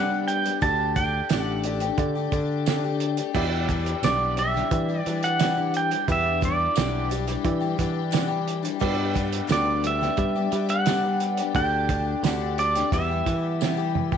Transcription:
Already playing: G2 D3 G3 D4 G4 B4 D5 F#5
0.10 G3 B3 D4 G4
0.28 G5, closed hi-hat
0.43 G3 B3 D4 G4, closed hi-hat
0.61 D2 D3 A3 D4 G4 A4 D5 A5, kick, closed hi-hat
0.95 D3 A3 D4 G4 G5, kick, closed hi-hat
1.29 A1 D3 A3 D4 G4 A4 D5, snare, closed hi-hat, tambourine
1.41 F#5
1.64 D3 A3 D4 G4 A4 D5, closed hi-hat
1.80 A3 D4 G4, closed hi-hat
1.98 D3 G4 A4 D5, kick, closed hi-hat
2.15 A3 D4 G4
2.32 D3 A3 D4 G4, kick, closed hi-hat
2.66 D3 A3 D4 G4 A4 D5, snare, closed hi-hat, tambourine
2.84 A3 D4 G4
3.00 closed hi-hat
3.17 A3 D4 G4, closed hi-hat
3.33 E2 B2 E3 G3 D4 E4 G4 B4 D5, kick, crash
3.69 E3 G3 D4 G4, kick, closed hi-hat
3.86 closed hi-hat
4.03 B1 E2 B2 E3 G3 D4 E4 G4 D5, snare, closed hi-hat, tambourine
4.37 E3 G3 D4 E4 G4 D5 E5, closed hi-hat
4.54 E3 G3 D4 G4, snare
4.71 E3 E4 G4 D5, kick, closed hi-hat
4.89 E3 G3 D4 G4
5.02 E3 D5
5.06 E3 G3 D4 G4, closed hi-hat
5.23 F#5, closed hi-hat
5.39 E2 B2 E3 G3 D4 E4 G4 D5, snare, closed hi-hat, tambourine
5.57 E3 G3 D4 G4
5.74 G5, closed hi-hat
5.91 E3 G3 D4 G4, closed hi-hat
6.07 E2 B2 E3 G3 D4 E4 G4 B4, kick, closed hi-hat
6.12 E5
6.41 E3 G3 D4 G4 D5, kick, closed hi-hat
6.75 B1 E2 B2 E3 G3 D4 E4 G4 D5, snare, closed hi-hat, tambourine
7.09 E3 G3 D4 E4 G4 D5, closed hi-hat
7.27 E3 G3 D4 G4, closed hi-hat
7.44 E3 E4 G4 D5, kick, closed hi-hat
7.60 E3 G3 D4 G4
7.78 E3 G3 D4 G4 F#5, kick, closed hi-hat
8.11 E2 B2 E3 G3 D4 E4 G4 D5 G5, snare, closed hi-hat, tambourine
8.28 E3 G3 D4 G4 B5
8.48 closed hi-hat
8.62 E3 G3 D4 G4, closed hi-hat
8.79 G2 D3 G3 B3 D4 G4 B4 D5, kick, crash
9.14 G3 B3 D4 G4, kick, closed hi-hat
9.33 closed hi-hat
9.47 D2 G2 D3 G3 B3 D4 G4 B4 D5, snare, closed hi-hat, tambourine
9.52 D5
9.83 G3 B3 D4 G4 B4 D5, closed hi-hat
9.87 E5
10.01 G3 B3 D4 G4, snare
10.17 G3 G4 B4 D5, kick, closed hi-hat
10.35 G3 B3 D4 G4
10.52 G3 B3 D4 G4, closed hi-hat
10.69 F#5, closed hi-hat
10.86 G2 D3 G3 B3 D4 G4 B4 E5, snare, closed hi-hat, tambourine
11.04 G3 B3 D4 G4
11.20 closed hi-hat
11.37 B3 D4 G4, closed hi-hat
11.42 G3
11.55 D2 D3 A3 D4 G4 A4 D5 G5, kick, closed hi-hat
11.89 D3 A3 D4 G4, kick, closed hi-hat
12.23 D2 D3 A3 D4 G4 A4 D5 F#5, snare, closed hi-hat, tambourine
12.57 D3 A3 D4 G4 A4 D5, closed hi-hat
12.75 A3 D4 G4, snare, closed hi-hat
12.91 E2 B2 E3 G3 B3 E4 G4 B4 E5, kick, closed hi-hat
13.10 E3 G3 B3 G4
13.26 E3 G3 B3 G4, kick, closed hi-hat
13.61 E2 B2 E3 G3 B3 G4 B4 E5, snare, tambourine
13.77 E3 G3 B3 G4
13.95 mid tom
14.12 G3 B3 G4, kick

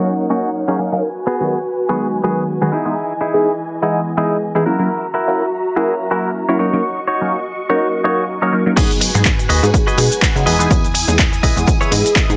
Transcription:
Already playing: F#3 A#3 C#4 D#4 F#4 A#4 C#5 F#5
0.30 F#3 A#3 C#4 D#4 F#4 A#4
0.68 F#3 A#3 C#4 D#4 G#4 A#4
0.79 F#3 A#3 C#4 D#4 A#4
0.92 F#3 A#3 C#4 D#4 A#4, muted clean electric guitar stroke
1.03 F#4 B4 G#5
1.27 B3 F#4 G#4
1.40 D#3 F#3 G#3 B3 F#4
1.89 D#3 F#3 G#3 B3 F#4 G#4
2.23 D#3 F#3 G#3 B3 F#4 G#4
2.61 D#3 F#3 G#3 B3 F#4 G#4
2.72 E3 G#3 B3 D#4 E4 G#4 D#5
2.85 E3 G#3 B3 D#4 G#4
3.21 D#4 E4 G#4
3.33 E3 G#3 B3 D#4 G#4
3.82 E3 G#3 B3 D#4 E4 G#4 D#5
4.17 E3 G#3 B3 D#4 E4 G#4 D#5
4.55 E3 G#3 B3 D#4 E4 G#4
4.66 F#3 A#3 C#4 E4 F#4 A#4 E5 A#5
4.79 F#3 A#3 C#4 E4 A#4
5.14 E4 F#4 A#4
5.27 F#3 A#3 C#4 E4 A#4
5.76 F#3 A#3 C#4 E4 F#4 G#4 A#4
6.11 F#3 A#3 C#4 E4 F#4 A#4
6.48 F#3 A#3 C#4 E4 F#4 A#4 C#5
6.59 F#3 A#3 C#4 D#4 F#4 A#4 C#5 D#5 C#6
6.73 F#3 A#3 C#4 D#4 A#4
7.07 D#4 F#4 C#5
7.21 F#3 A#3 C#4 D#4 A#4
7.69 F#3 A#3 C#4 D#4 F#4 A#4 C#5
8.04 F#3 A#3 C#4 D#4 F#4 A#4 C#5
8.41 F#3 A#3 C#4 D#4 F#4 A#4 C#5
8.52 F#3 A#3 C#4 D#4 A#4
8.66 F#3 A#3 C#4 D#4 A#4, muted clean electric guitar stroke
8.77 G#2 G#3 B3 D#4 F#4 G#4 B4 D#5 G#5, kick, closed hi-hat, tambourine, crash, shaker
8.90 closed hi-hat, tambourine, shaker
9.01 muted clean electric guitar stroke, open hi-hat, tambourine
9.14 G#2 F#3 G#3 B3 D#4 G#4, muted clean electric guitar stroke, closed hi-hat, tambourine, shaker
9.25 kick, clap, closed hi-hat, tambourine, shaker
9.39 muted clean electric guitar stroke, closed hi-hat, tambourine, shaker
9.49 D#2 F#4 G#4 B4 D#5, open hi-hat, tambourine
9.63 G#2 F#3 G#3 B3 D#4 G#4, closed hi-hat, tambourine, shaker
9.74 kick, closed hi-hat, tambourine, shaker
9.87 F#4 G#4 B4 D#5, tambourine, shaker
9.98 B2 F#3 G#3 B3 D#4 G#4, open hi-hat, tambourine
10.11 muted clean electric guitar stroke, closed hi-hat, tambourine, shaker
10.21 F#4 G#4 B4 F#5, kick, clap, closed hi-hat, tambourine, shaker
10.35 C#3 F#3 G#3 B3 D#4 G#4, closed hi-hat, tambourine, shaker
10.46 E1 E3 G#3 B3 D#4 E4 G#4 B4 D#5 D#6, open hi-hat, tambourine
10.59 E3 G#3 B3 D#4 G#4, closed hi-hat, tambourine, shaker
10.70 E2, kick, closed hi-hat, tambourine, shaker
10.84 closed hi-hat, tambourine, shaker
10.94 muted clean electric guitar stroke, open hi-hat, tambourine
11.07 E2 E3 G#3 B3 D#4 G#4, muted clean electric guitar stroke, closed hi-hat, tambourine, shaker
11.19 kick, clap, closed hi-hat, tambourine, shaker
11.32 muted clean electric guitar stroke, closed hi-hat, tambourine, shaker
11.43 B1 E4 G#4 B4 D#5, kick, open hi-hat, tambourine
11.56 E2 E3 G#3 B3 G#4, closed hi-hat, tambourine, shaker
11.67 muted clean electric guitar stroke, kick, closed hi-hat, tambourine, shaker
11.81 E4 G#4 B4 C#5, tambourine, shaker
11.91 G#2 E3 G#3 B3 G#4 D#5, open hi-hat, tambourine
12.05 muted clean electric guitar stroke, closed hi-hat, tambourine, shaker
12.15 E4 G#4 B4 D#5, kick, clap, closed hi-hat, tambourine, shaker
12.29 G#2 E3 G#3 B3 D#4 G#4, closed hi-hat, tambourine, shaker

